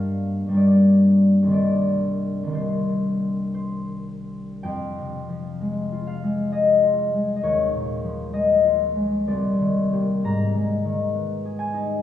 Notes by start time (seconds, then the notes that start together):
Already playing: G2 G3 A#3 D4 F5
0.47 G2 G3
0.51 A#3 D4
0.57 D5
1.43 C2 D#3
1.48 A#3 D4
1.53 D5
2.43 C2 D#3
2.48 A#3 D4
2.54 C5
3.54 C5
4.63 F2 G5
4.98 C3
5.29 F3
5.61 G#3
5.92 F4
6.07 F5
6.24 G#3
6.52 G#4 D#5
6.83 F4
7.14 G#3
7.36 D#5
7.43 D#2 C#5
7.73 A#2
8.04 F3
8.33 G#3 D#5
8.65 F4
8.96 G#3
9.27 C2 D5
9.59 D#3
9.92 A#3 G4
10.24 G#2 A#5
10.55 G#3
10.85 D#3
11.14 B3
11.45 G#4
11.59 G#5
11.74 D#4